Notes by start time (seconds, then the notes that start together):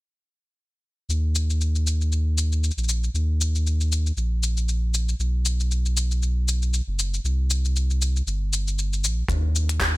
1.09 D#2, shaker
1.35 shaker
1.50 shaker
1.61 shaker
1.75 shaker
1.87 shaker
2.01 shaker
2.12 shaker
2.38 shaker
2.52 shaker
2.64 shaker
2.71 shaker
2.77 A#1, shaker
2.84 shaker
2.89 shaker
3.04 shaker
3.14 D#2, shaker
3.41 shaker
3.55 shaker
3.67 shaker
3.81 shaker
3.92 shaker
4.06 shaker
4.17 A#1, shaker
4.43 shaker
4.57 shaker
4.69 shaker
4.94 shaker
5.09 shaker
5.19 B1, shaker
5.46 shaker
5.60 shaker
5.71 shaker
5.86 shaker
5.97 shaker
6.11 shaker
6.22 shaker
6.48 shaker
6.62 shaker
6.74 shaker
6.87 F#1
6.99 shaker
7.14 shaker
7.24 C2, shaker
7.50 shaker
7.65 shaker
7.76 shaker
7.90 shaker
8.02 shaker
8.16 shaker
8.27 G1, shaker
8.53 shaker
8.68 shaker
8.79 shaker
8.93 shaker
9.04 A#1, shaker
9.28 D#2, kick, closed hi-hat, shaker
9.56 shaker
9.69 closed hi-hat, shaker
9.80 kick, clap, closed hi-hat, shaker